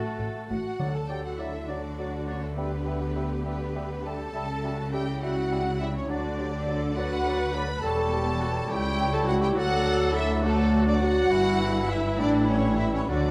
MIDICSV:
0, 0, Header, 1, 13, 480
1, 0, Start_track
1, 0, Key_signature, 2, "major"
1, 0, Tempo, 595238
1, 639, Time_signature, 6, 3, 24, 8
1, 3512, Tempo, 579710
1, 8792, Tempo, 592885
1, 10878, End_track
2, 0, Start_track
2, 0, Title_t, "Flute section"
2, 0, Program_c, 0, 73
2, 0, Note_on_c, 0, 69, 56
2, 364, Note_off_c, 0, 69, 0
2, 399, Note_on_c, 0, 78, 56
2, 760, Note_off_c, 0, 78, 0
2, 765, Note_on_c, 0, 81, 49
2, 875, Note_on_c, 0, 79, 46
2, 882, Note_off_c, 0, 81, 0
2, 923, Note_off_c, 0, 79, 0
2, 999, Note_on_c, 0, 78, 50
2, 1047, Note_off_c, 0, 78, 0
2, 1118, Note_on_c, 0, 76, 52
2, 1350, Note_on_c, 0, 74, 51
2, 1353, Note_off_c, 0, 76, 0
2, 1827, Note_on_c, 0, 73, 46
2, 1830, Note_off_c, 0, 74, 0
2, 1875, Note_off_c, 0, 73, 0
2, 1950, Note_on_c, 0, 69, 45
2, 2068, Note_off_c, 0, 69, 0
2, 2071, Note_on_c, 0, 71, 53
2, 2777, Note_off_c, 0, 71, 0
2, 2787, Note_on_c, 0, 71, 62
2, 3263, Note_off_c, 0, 71, 0
2, 3274, Note_on_c, 0, 81, 62
2, 3776, Note_off_c, 0, 81, 0
2, 3997, Note_on_c, 0, 79, 61
2, 4226, Note_on_c, 0, 78, 74
2, 4232, Note_off_c, 0, 79, 0
2, 4706, Note_on_c, 0, 76, 62
2, 4709, Note_off_c, 0, 78, 0
2, 4827, Note_off_c, 0, 76, 0
2, 4835, Note_on_c, 0, 73, 65
2, 4948, Note_on_c, 0, 74, 75
2, 4951, Note_off_c, 0, 73, 0
2, 5673, Note_off_c, 0, 74, 0
2, 5676, Note_on_c, 0, 78, 77
2, 6146, Note_off_c, 0, 78, 0
2, 6153, Note_on_c, 0, 83, 81
2, 6388, Note_off_c, 0, 83, 0
2, 6394, Note_on_c, 0, 81, 84
2, 7104, Note_on_c, 0, 79, 90
2, 7111, Note_off_c, 0, 81, 0
2, 7467, Note_off_c, 0, 79, 0
2, 7468, Note_on_c, 0, 81, 90
2, 7587, Note_off_c, 0, 81, 0
2, 7591, Note_on_c, 0, 78, 90
2, 7641, Note_off_c, 0, 78, 0
2, 7712, Note_on_c, 0, 79, 86
2, 7829, Note_off_c, 0, 79, 0
2, 7832, Note_on_c, 0, 78, 97
2, 8090, Note_off_c, 0, 78, 0
2, 8301, Note_on_c, 0, 76, 87
2, 8541, Note_off_c, 0, 76, 0
2, 8542, Note_on_c, 0, 69, 89
2, 8899, Note_off_c, 0, 69, 0
2, 8901, Note_on_c, 0, 74, 81
2, 8950, Note_off_c, 0, 74, 0
2, 9018, Note_on_c, 0, 78, 101
2, 9723, Note_off_c, 0, 78, 0
2, 9732, Note_on_c, 0, 76, 77
2, 9967, Note_on_c, 0, 74, 83
2, 9976, Note_off_c, 0, 76, 0
2, 10204, Note_on_c, 0, 73, 90
2, 10215, Note_off_c, 0, 74, 0
2, 10447, Note_on_c, 0, 76, 78
2, 10456, Note_off_c, 0, 73, 0
2, 10496, Note_off_c, 0, 76, 0
2, 10567, Note_on_c, 0, 73, 76
2, 10691, Note_on_c, 0, 74, 85
2, 10696, Note_off_c, 0, 73, 0
2, 10878, Note_off_c, 0, 74, 0
2, 10878, End_track
3, 0, Start_track
3, 0, Title_t, "Violin section"
3, 0, Program_c, 1, 48
3, 0, Note_on_c, 1, 69, 64
3, 363, Note_off_c, 1, 69, 0
3, 401, Note_on_c, 1, 78, 61
3, 760, Note_off_c, 1, 78, 0
3, 764, Note_on_c, 1, 81, 60
3, 870, Note_on_c, 1, 79, 56
3, 881, Note_off_c, 1, 81, 0
3, 994, Note_off_c, 1, 79, 0
3, 1001, Note_on_c, 1, 78, 52
3, 1117, Note_off_c, 1, 78, 0
3, 1122, Note_on_c, 1, 76, 59
3, 1360, Note_off_c, 1, 76, 0
3, 1366, Note_on_c, 1, 74, 62
3, 1833, Note_on_c, 1, 73, 59
3, 1838, Note_off_c, 1, 74, 0
3, 1950, Note_off_c, 1, 73, 0
3, 1967, Note_on_c, 1, 69, 50
3, 2076, Note_on_c, 1, 71, 61
3, 2079, Note_off_c, 1, 69, 0
3, 2777, Note_off_c, 1, 71, 0
3, 2794, Note_on_c, 1, 71, 65
3, 3267, Note_off_c, 1, 71, 0
3, 3280, Note_on_c, 1, 81, 76
3, 3988, Note_on_c, 1, 79, 76
3, 3996, Note_off_c, 1, 81, 0
3, 4223, Note_on_c, 1, 78, 85
3, 4227, Note_off_c, 1, 79, 0
3, 4698, Note_off_c, 1, 78, 0
3, 4712, Note_on_c, 1, 76, 76
3, 4832, Note_off_c, 1, 76, 0
3, 4840, Note_on_c, 1, 73, 66
3, 4950, Note_on_c, 1, 74, 86
3, 4954, Note_off_c, 1, 73, 0
3, 5660, Note_off_c, 1, 74, 0
3, 5677, Note_on_c, 1, 78, 99
3, 6147, Note_on_c, 1, 83, 100
3, 6156, Note_off_c, 1, 78, 0
3, 6390, Note_off_c, 1, 83, 0
3, 6390, Note_on_c, 1, 81, 95
3, 7109, Note_off_c, 1, 81, 0
3, 7110, Note_on_c, 1, 79, 110
3, 7470, Note_off_c, 1, 79, 0
3, 7475, Note_on_c, 1, 81, 95
3, 7593, Note_off_c, 1, 81, 0
3, 7593, Note_on_c, 1, 78, 101
3, 7641, Note_off_c, 1, 78, 0
3, 7720, Note_on_c, 1, 79, 86
3, 7766, Note_off_c, 1, 79, 0
3, 7841, Note_on_c, 1, 78, 121
3, 8306, Note_off_c, 1, 78, 0
3, 8306, Note_on_c, 1, 76, 102
3, 8544, Note_off_c, 1, 76, 0
3, 8546, Note_on_c, 1, 69, 107
3, 8901, Note_off_c, 1, 69, 0
3, 8909, Note_on_c, 1, 74, 97
3, 9019, Note_on_c, 1, 78, 115
3, 9026, Note_off_c, 1, 74, 0
3, 9733, Note_on_c, 1, 76, 95
3, 9738, Note_off_c, 1, 78, 0
3, 9975, Note_on_c, 1, 74, 117
3, 9977, Note_off_c, 1, 76, 0
3, 10040, Note_off_c, 1, 74, 0
3, 10214, Note_on_c, 1, 73, 85
3, 10456, Note_off_c, 1, 73, 0
3, 10459, Note_on_c, 1, 76, 93
3, 10584, Note_off_c, 1, 76, 0
3, 10587, Note_on_c, 1, 73, 74
3, 10707, Note_off_c, 1, 73, 0
3, 10709, Note_on_c, 1, 74, 105
3, 10878, Note_off_c, 1, 74, 0
3, 10878, End_track
4, 0, Start_track
4, 0, Title_t, "Oboe"
4, 0, Program_c, 2, 68
4, 0, Note_on_c, 2, 81, 58
4, 395, Note_off_c, 2, 81, 0
4, 641, Note_on_c, 2, 74, 42
4, 748, Note_off_c, 2, 74, 0
4, 884, Note_on_c, 2, 74, 44
4, 991, Note_off_c, 2, 74, 0
4, 1123, Note_on_c, 2, 74, 38
4, 1230, Note_off_c, 2, 74, 0
4, 1357, Note_on_c, 2, 74, 44
4, 1465, Note_off_c, 2, 74, 0
4, 1601, Note_on_c, 2, 74, 39
4, 1707, Note_off_c, 2, 74, 0
4, 1833, Note_on_c, 2, 74, 44
4, 1940, Note_off_c, 2, 74, 0
4, 2070, Note_on_c, 2, 76, 47
4, 2178, Note_off_c, 2, 76, 0
4, 2313, Note_on_c, 2, 76, 46
4, 2420, Note_off_c, 2, 76, 0
4, 2546, Note_on_c, 2, 76, 44
4, 2655, Note_off_c, 2, 76, 0
4, 2783, Note_on_c, 2, 76, 43
4, 2894, Note_off_c, 2, 76, 0
4, 3026, Note_on_c, 2, 76, 43
4, 3136, Note_off_c, 2, 76, 0
4, 3281, Note_on_c, 2, 76, 46
4, 3386, Note_off_c, 2, 76, 0
4, 3502, Note_on_c, 2, 76, 56
4, 3612, Note_off_c, 2, 76, 0
4, 3743, Note_on_c, 2, 76, 49
4, 3854, Note_off_c, 2, 76, 0
4, 3993, Note_on_c, 2, 76, 46
4, 4102, Note_off_c, 2, 76, 0
4, 4235, Note_on_c, 2, 76, 52
4, 4343, Note_off_c, 2, 76, 0
4, 4481, Note_on_c, 2, 76, 47
4, 4587, Note_off_c, 2, 76, 0
4, 4718, Note_on_c, 2, 76, 46
4, 4824, Note_off_c, 2, 76, 0
4, 4963, Note_on_c, 2, 74, 63
4, 5069, Note_off_c, 2, 74, 0
4, 5198, Note_on_c, 2, 74, 55
4, 5306, Note_off_c, 2, 74, 0
4, 5441, Note_on_c, 2, 74, 56
4, 5548, Note_off_c, 2, 74, 0
4, 5693, Note_on_c, 2, 74, 58
4, 5798, Note_off_c, 2, 74, 0
4, 5934, Note_on_c, 2, 74, 59
4, 6038, Note_off_c, 2, 74, 0
4, 6177, Note_on_c, 2, 74, 60
4, 6280, Note_off_c, 2, 74, 0
4, 6417, Note_on_c, 2, 73, 66
4, 7089, Note_off_c, 2, 73, 0
4, 7113, Note_on_c, 2, 73, 79
4, 7818, Note_off_c, 2, 73, 0
4, 7830, Note_on_c, 2, 74, 74
4, 8531, Note_off_c, 2, 74, 0
4, 8536, Note_on_c, 2, 74, 77
4, 9259, Note_on_c, 2, 71, 86
4, 9272, Note_off_c, 2, 74, 0
4, 9970, Note_off_c, 2, 71, 0
4, 9975, Note_on_c, 2, 71, 75
4, 10691, Note_off_c, 2, 71, 0
4, 10702, Note_on_c, 2, 69, 82
4, 10878, Note_off_c, 2, 69, 0
4, 10878, End_track
5, 0, Start_track
5, 0, Title_t, "Trumpet section"
5, 0, Program_c, 3, 61
5, 0, Note_on_c, 3, 66, 90
5, 400, Note_off_c, 3, 66, 0
5, 10878, End_track
6, 0, Start_track
6, 0, Title_t, "Viola section"
6, 0, Program_c, 4, 48
6, 0, Note_on_c, 4, 66, 82
6, 371, Note_off_c, 4, 66, 0
6, 643, Note_on_c, 4, 69, 48
6, 1328, Note_off_c, 4, 69, 0
6, 1363, Note_on_c, 4, 66, 55
6, 2074, Note_off_c, 4, 66, 0
6, 2075, Note_on_c, 4, 67, 62
6, 3484, Note_off_c, 4, 67, 0
6, 3503, Note_on_c, 4, 69, 64
6, 3743, Note_off_c, 4, 69, 0
6, 3746, Note_on_c, 4, 66, 56
6, 3990, Note_off_c, 4, 66, 0
6, 3990, Note_on_c, 4, 64, 51
6, 4941, Note_on_c, 4, 66, 62
6, 4951, Note_off_c, 4, 64, 0
6, 5179, Note_on_c, 4, 67, 60
6, 5187, Note_off_c, 4, 66, 0
6, 5421, Note_on_c, 4, 69, 67
6, 5428, Note_off_c, 4, 67, 0
6, 5669, Note_off_c, 4, 69, 0
6, 5669, Note_on_c, 4, 71, 85
6, 6388, Note_on_c, 4, 69, 76
6, 6391, Note_off_c, 4, 71, 0
6, 6624, Note_on_c, 4, 67, 72
6, 6626, Note_off_c, 4, 69, 0
6, 6862, Note_on_c, 4, 66, 75
6, 6868, Note_off_c, 4, 67, 0
6, 6928, Note_off_c, 4, 66, 0
6, 7102, Note_on_c, 4, 64, 78
6, 7812, Note_off_c, 4, 64, 0
6, 7819, Note_on_c, 4, 69, 105
6, 8545, Note_off_c, 4, 69, 0
6, 8547, Note_on_c, 4, 66, 81
6, 9265, Note_off_c, 4, 66, 0
6, 9265, Note_on_c, 4, 64, 99
6, 10679, Note_off_c, 4, 64, 0
6, 10698, Note_on_c, 4, 66, 82
6, 10878, Note_off_c, 4, 66, 0
6, 10878, End_track
7, 0, Start_track
7, 0, Title_t, "Clarinet"
7, 0, Program_c, 5, 71
7, 0, Note_on_c, 5, 57, 54
7, 412, Note_on_c, 5, 66, 60
7, 424, Note_off_c, 5, 57, 0
7, 761, Note_off_c, 5, 66, 0
7, 766, Note_on_c, 5, 69, 46
7, 818, Note_off_c, 5, 69, 0
7, 879, Note_on_c, 5, 67, 43
7, 999, Note_on_c, 5, 66, 47
7, 1011, Note_off_c, 5, 67, 0
7, 1110, Note_off_c, 5, 66, 0
7, 1115, Note_on_c, 5, 64, 51
7, 1224, Note_off_c, 5, 64, 0
7, 1358, Note_on_c, 5, 62, 53
7, 1829, Note_on_c, 5, 61, 46
7, 1841, Note_off_c, 5, 62, 0
7, 1951, Note_on_c, 5, 57, 45
7, 1963, Note_off_c, 5, 61, 0
7, 2076, Note_on_c, 5, 59, 54
7, 2088, Note_off_c, 5, 57, 0
7, 2785, Note_off_c, 5, 59, 0
7, 2790, Note_on_c, 5, 59, 57
7, 3271, Note_on_c, 5, 69, 74
7, 3283, Note_off_c, 5, 59, 0
7, 3983, Note_off_c, 5, 69, 0
7, 3988, Note_on_c, 5, 67, 61
7, 4098, Note_off_c, 5, 67, 0
7, 4241, Note_on_c, 5, 66, 73
7, 4707, Note_off_c, 5, 66, 0
7, 4713, Note_on_c, 5, 64, 58
7, 4767, Note_off_c, 5, 64, 0
7, 4827, Note_on_c, 5, 61, 62
7, 4937, Note_off_c, 5, 61, 0
7, 4942, Note_on_c, 5, 62, 75
7, 5431, Note_off_c, 5, 62, 0
7, 5668, Note_on_c, 5, 66, 74
7, 6119, Note_off_c, 5, 66, 0
7, 6139, Note_on_c, 5, 71, 76
7, 6377, Note_off_c, 5, 71, 0
7, 6382, Note_on_c, 5, 69, 82
7, 7090, Note_off_c, 5, 69, 0
7, 7099, Note_on_c, 5, 67, 84
7, 7457, Note_off_c, 5, 67, 0
7, 7469, Note_on_c, 5, 69, 92
7, 7578, Note_on_c, 5, 66, 94
7, 7590, Note_off_c, 5, 69, 0
7, 7700, Note_on_c, 5, 67, 82
7, 7712, Note_off_c, 5, 66, 0
7, 7807, Note_off_c, 5, 67, 0
7, 7812, Note_on_c, 5, 66, 100
7, 8286, Note_on_c, 5, 64, 84
7, 8298, Note_off_c, 5, 66, 0
7, 8527, Note_off_c, 5, 64, 0
7, 8532, Note_on_c, 5, 57, 88
7, 8894, Note_off_c, 5, 57, 0
7, 8897, Note_on_c, 5, 62, 84
7, 9020, Note_on_c, 5, 66, 99
7, 9032, Note_off_c, 5, 62, 0
7, 9733, Note_on_c, 5, 64, 78
7, 9746, Note_off_c, 5, 66, 0
7, 9966, Note_off_c, 5, 64, 0
7, 9971, Note_on_c, 5, 62, 86
7, 10215, Note_on_c, 5, 61, 79
7, 10227, Note_off_c, 5, 62, 0
7, 10453, Note_off_c, 5, 61, 0
7, 10458, Note_on_c, 5, 64, 89
7, 10514, Note_off_c, 5, 64, 0
7, 10583, Note_on_c, 5, 61, 71
7, 10639, Note_off_c, 5, 61, 0
7, 10711, Note_on_c, 5, 62, 89
7, 10878, Note_off_c, 5, 62, 0
7, 10878, End_track
8, 0, Start_track
8, 0, Title_t, "French horn section"
8, 0, Program_c, 6, 60
8, 0, Note_on_c, 6, 57, 51
8, 371, Note_off_c, 6, 57, 0
8, 412, Note_on_c, 6, 66, 58
8, 759, Note_off_c, 6, 66, 0
8, 771, Note_on_c, 6, 69, 51
8, 884, Note_off_c, 6, 69, 0
8, 896, Note_on_c, 6, 67, 48
8, 946, Note_off_c, 6, 67, 0
8, 1010, Note_on_c, 6, 66, 46
8, 1122, Note_off_c, 6, 66, 0
8, 1135, Note_on_c, 6, 64, 48
8, 1366, Note_on_c, 6, 62, 48
8, 1367, Note_off_c, 6, 64, 0
8, 1838, Note_off_c, 6, 62, 0
8, 1845, Note_on_c, 6, 61, 52
8, 1958, Note_off_c, 6, 61, 0
8, 1961, Note_on_c, 6, 57, 44
8, 2076, Note_off_c, 6, 57, 0
8, 2077, Note_on_c, 6, 59, 58
8, 2777, Note_off_c, 6, 59, 0
8, 2791, Note_on_c, 6, 59, 54
8, 3265, Note_off_c, 6, 59, 0
8, 3267, Note_on_c, 6, 69, 68
8, 3985, Note_on_c, 6, 67, 60
8, 3990, Note_off_c, 6, 69, 0
8, 4096, Note_off_c, 6, 67, 0
8, 4233, Note_on_c, 6, 66, 59
8, 4703, Note_off_c, 6, 66, 0
8, 4718, Note_on_c, 6, 64, 70
8, 4823, Note_on_c, 6, 61, 56
8, 4835, Note_off_c, 6, 64, 0
8, 4879, Note_off_c, 6, 61, 0
8, 4946, Note_on_c, 6, 62, 73
8, 5658, Note_off_c, 6, 62, 0
8, 5667, Note_on_c, 6, 66, 66
8, 6149, Note_on_c, 6, 71, 84
8, 6152, Note_off_c, 6, 66, 0
8, 6386, Note_off_c, 6, 71, 0
8, 6386, Note_on_c, 6, 69, 67
8, 7093, Note_off_c, 6, 69, 0
8, 7107, Note_on_c, 6, 67, 78
8, 7465, Note_on_c, 6, 69, 78
8, 7468, Note_off_c, 6, 67, 0
8, 7586, Note_on_c, 6, 66, 94
8, 7588, Note_off_c, 6, 69, 0
8, 7706, Note_on_c, 6, 67, 91
8, 7709, Note_off_c, 6, 66, 0
8, 7823, Note_on_c, 6, 66, 103
8, 7828, Note_off_c, 6, 67, 0
8, 8304, Note_on_c, 6, 64, 89
8, 8306, Note_off_c, 6, 66, 0
8, 8543, Note_off_c, 6, 64, 0
8, 8554, Note_on_c, 6, 57, 78
8, 8909, Note_on_c, 6, 62, 76
8, 8912, Note_off_c, 6, 57, 0
8, 9028, Note_off_c, 6, 62, 0
8, 9036, Note_on_c, 6, 66, 105
8, 9732, Note_off_c, 6, 66, 0
8, 9742, Note_on_c, 6, 64, 85
8, 9977, Note_on_c, 6, 62, 81
8, 9981, Note_off_c, 6, 64, 0
8, 10215, Note_off_c, 6, 62, 0
8, 10225, Note_on_c, 6, 61, 76
8, 10462, Note_on_c, 6, 64, 79
8, 10467, Note_off_c, 6, 61, 0
8, 10586, Note_off_c, 6, 64, 0
8, 10588, Note_on_c, 6, 61, 75
8, 10710, Note_off_c, 6, 61, 0
8, 10712, Note_on_c, 6, 62, 85
8, 10878, Note_off_c, 6, 62, 0
8, 10878, End_track
9, 0, Start_track
9, 0, Title_t, "Violin section"
9, 0, Program_c, 7, 48
9, 0, Note_on_c, 7, 57, 60
9, 367, Note_off_c, 7, 57, 0
9, 408, Note_on_c, 7, 66, 60
9, 756, Note_on_c, 7, 69, 51
9, 757, Note_off_c, 7, 66, 0
9, 877, Note_off_c, 7, 69, 0
9, 883, Note_on_c, 7, 67, 53
9, 1001, Note_off_c, 7, 67, 0
9, 1013, Note_on_c, 7, 66, 46
9, 1117, Note_on_c, 7, 64, 53
9, 1124, Note_off_c, 7, 66, 0
9, 1358, Note_off_c, 7, 64, 0
9, 1360, Note_on_c, 7, 62, 56
9, 1825, Note_off_c, 7, 62, 0
9, 1842, Note_on_c, 7, 61, 46
9, 1888, Note_off_c, 7, 61, 0
9, 1973, Note_on_c, 7, 57, 48
9, 2079, Note_off_c, 7, 57, 0
9, 2086, Note_on_c, 7, 59, 60
9, 2778, Note_off_c, 7, 59, 0
9, 2787, Note_on_c, 7, 59, 54
9, 3264, Note_off_c, 7, 59, 0
9, 3277, Note_on_c, 7, 69, 70
9, 3995, Note_off_c, 7, 69, 0
9, 4003, Note_on_c, 7, 67, 72
9, 4235, Note_off_c, 7, 67, 0
9, 4244, Note_on_c, 7, 66, 71
9, 4718, Note_off_c, 7, 66, 0
9, 4724, Note_on_c, 7, 64, 61
9, 4769, Note_off_c, 7, 64, 0
9, 4850, Note_on_c, 7, 61, 61
9, 4959, Note_off_c, 7, 61, 0
9, 4972, Note_on_c, 7, 62, 76
9, 5685, Note_off_c, 7, 62, 0
9, 5685, Note_on_c, 7, 66, 78
9, 6151, Note_off_c, 7, 66, 0
9, 6165, Note_on_c, 7, 71, 71
9, 6231, Note_off_c, 7, 71, 0
9, 6399, Note_on_c, 7, 69, 78
9, 7099, Note_off_c, 7, 69, 0
9, 7120, Note_on_c, 7, 67, 95
9, 7468, Note_on_c, 7, 69, 77
9, 7475, Note_off_c, 7, 67, 0
9, 7587, Note_off_c, 7, 69, 0
9, 7597, Note_on_c, 7, 66, 84
9, 7714, Note_off_c, 7, 66, 0
9, 7716, Note_on_c, 7, 67, 76
9, 7834, Note_off_c, 7, 67, 0
9, 7834, Note_on_c, 7, 66, 92
9, 8303, Note_off_c, 7, 66, 0
9, 8320, Note_on_c, 7, 64, 83
9, 8386, Note_off_c, 7, 64, 0
9, 8555, Note_on_c, 7, 57, 85
9, 8905, Note_off_c, 7, 57, 0
9, 8912, Note_on_c, 7, 62, 77
9, 8959, Note_off_c, 7, 62, 0
9, 9039, Note_on_c, 7, 66, 94
9, 9734, Note_off_c, 7, 66, 0
9, 9750, Note_on_c, 7, 64, 75
9, 9815, Note_off_c, 7, 64, 0
9, 9992, Note_on_c, 7, 62, 98
9, 10223, Note_off_c, 7, 62, 0
9, 10232, Note_on_c, 7, 61, 84
9, 10463, Note_on_c, 7, 64, 86
9, 10470, Note_off_c, 7, 61, 0
9, 10512, Note_off_c, 7, 64, 0
9, 10591, Note_on_c, 7, 61, 75
9, 10708, Note_on_c, 7, 62, 92
9, 10709, Note_off_c, 7, 61, 0
9, 10878, Note_off_c, 7, 62, 0
9, 10878, End_track
10, 0, Start_track
10, 0, Title_t, "Bassoon"
10, 0, Program_c, 8, 70
10, 0, Note_on_c, 8, 57, 59
10, 387, Note_off_c, 8, 57, 0
10, 642, Note_on_c, 8, 54, 47
10, 749, Note_off_c, 8, 54, 0
10, 878, Note_on_c, 8, 54, 34
10, 986, Note_off_c, 8, 54, 0
10, 1119, Note_on_c, 8, 54, 41
10, 1227, Note_off_c, 8, 54, 0
10, 1366, Note_on_c, 8, 54, 42
10, 1471, Note_off_c, 8, 54, 0
10, 1607, Note_on_c, 8, 54, 44
10, 1711, Note_off_c, 8, 54, 0
10, 1832, Note_on_c, 8, 54, 42
10, 1939, Note_off_c, 8, 54, 0
10, 2077, Note_on_c, 8, 55, 49
10, 2183, Note_off_c, 8, 55, 0
10, 2305, Note_on_c, 8, 55, 38
10, 2413, Note_off_c, 8, 55, 0
10, 2547, Note_on_c, 8, 55, 41
10, 2656, Note_off_c, 8, 55, 0
10, 2785, Note_on_c, 8, 55, 43
10, 2896, Note_off_c, 8, 55, 0
10, 3032, Note_on_c, 8, 55, 48
10, 3141, Note_off_c, 8, 55, 0
10, 3276, Note_on_c, 8, 55, 46
10, 3382, Note_off_c, 8, 55, 0
10, 3510, Note_on_c, 8, 55, 55
10, 3619, Note_off_c, 8, 55, 0
10, 3747, Note_on_c, 8, 55, 47
10, 3857, Note_off_c, 8, 55, 0
10, 3993, Note_on_c, 8, 55, 50
10, 4102, Note_off_c, 8, 55, 0
10, 4233, Note_on_c, 8, 55, 51
10, 4341, Note_off_c, 8, 55, 0
10, 4475, Note_on_c, 8, 55, 56
10, 4582, Note_off_c, 8, 55, 0
10, 4718, Note_on_c, 8, 55, 54
10, 4824, Note_off_c, 8, 55, 0
10, 4953, Note_on_c, 8, 54, 66
10, 5061, Note_off_c, 8, 54, 0
10, 5189, Note_on_c, 8, 54, 50
10, 5299, Note_off_c, 8, 54, 0
10, 5436, Note_on_c, 8, 54, 49
10, 5544, Note_off_c, 8, 54, 0
10, 5676, Note_on_c, 8, 54, 57
10, 5784, Note_off_c, 8, 54, 0
10, 5918, Note_on_c, 8, 54, 59
10, 6025, Note_off_c, 8, 54, 0
10, 6159, Note_on_c, 8, 54, 53
10, 6266, Note_off_c, 8, 54, 0
10, 6399, Note_on_c, 8, 55, 78
10, 7080, Note_off_c, 8, 55, 0
10, 7108, Note_on_c, 8, 55, 81
10, 7827, Note_on_c, 8, 54, 85
10, 7840, Note_off_c, 8, 55, 0
10, 8542, Note_off_c, 8, 54, 0
10, 8547, Note_on_c, 8, 54, 77
10, 9263, Note_on_c, 8, 52, 91
10, 9275, Note_off_c, 8, 54, 0
10, 9976, Note_on_c, 8, 55, 84
10, 9988, Note_off_c, 8, 52, 0
10, 10696, Note_off_c, 8, 55, 0
10, 10701, Note_on_c, 8, 54, 85
10, 10878, Note_off_c, 8, 54, 0
10, 10878, End_track
11, 0, Start_track
11, 0, Title_t, "Timpani"
11, 0, Program_c, 10, 47
11, 641, Note_on_c, 10, 50, 59
11, 1327, Note_off_c, 10, 50, 0
11, 10710, Note_on_c, 10, 50, 45
11, 10759, Note_off_c, 10, 50, 0
11, 10769, Note_on_c, 10, 50, 42
11, 10824, Note_off_c, 10, 50, 0
11, 10834, Note_on_c, 10, 50, 43
11, 10878, Note_off_c, 10, 50, 0
11, 10878, End_track
12, 0, Start_track
12, 0, Title_t, "Cello section"
12, 0, Program_c, 11, 48
12, 153, Note_on_c, 11, 45, 53
12, 217, Note_off_c, 11, 45, 0
12, 401, Note_on_c, 11, 45, 56
12, 466, Note_off_c, 11, 45, 0
12, 645, Note_on_c, 11, 50, 44
12, 3481, Note_off_c, 11, 50, 0
12, 3513, Note_on_c, 11, 49, 59
12, 4925, Note_off_c, 11, 49, 0
12, 4958, Note_on_c, 11, 50, 66
12, 6368, Note_off_c, 11, 50, 0
12, 6396, Note_on_c, 11, 40, 72
12, 7079, Note_off_c, 11, 40, 0
12, 7111, Note_on_c, 11, 37, 79
12, 7827, Note_on_c, 11, 38, 70
12, 7831, Note_off_c, 11, 37, 0
12, 9237, Note_off_c, 11, 38, 0
12, 9258, Note_on_c, 11, 43, 78
12, 9945, Note_off_c, 11, 43, 0
12, 9977, Note_on_c, 11, 45, 76
12, 10705, Note_on_c, 11, 50, 78
12, 10707, Note_off_c, 11, 45, 0
12, 10878, Note_off_c, 11, 50, 0
12, 10878, End_track
13, 0, Start_track
13, 0, Title_t, "Double bass section"
13, 0, Program_c, 12, 48
13, 155, Note_on_c, 12, 33, 57
13, 219, Note_off_c, 12, 33, 0
13, 398, Note_on_c, 12, 33, 51
13, 463, Note_off_c, 12, 33, 0
13, 643, Note_on_c, 12, 38, 45
13, 3481, Note_off_c, 12, 38, 0
13, 3517, Note_on_c, 12, 37, 53
13, 4928, Note_off_c, 12, 37, 0
13, 4956, Note_on_c, 12, 38, 61
13, 6368, Note_off_c, 12, 38, 0
13, 6397, Note_on_c, 12, 28, 77
13, 7079, Note_off_c, 12, 28, 0
13, 7113, Note_on_c, 12, 37, 73
13, 7832, Note_off_c, 12, 37, 0
13, 7834, Note_on_c, 12, 38, 82
13, 9240, Note_off_c, 12, 38, 0
13, 9265, Note_on_c, 12, 31, 77
13, 9948, Note_off_c, 12, 31, 0
13, 9976, Note_on_c, 12, 33, 90
13, 10706, Note_off_c, 12, 33, 0
13, 10706, Note_on_c, 12, 38, 71
13, 10878, Note_off_c, 12, 38, 0
13, 10878, End_track
0, 0, End_of_file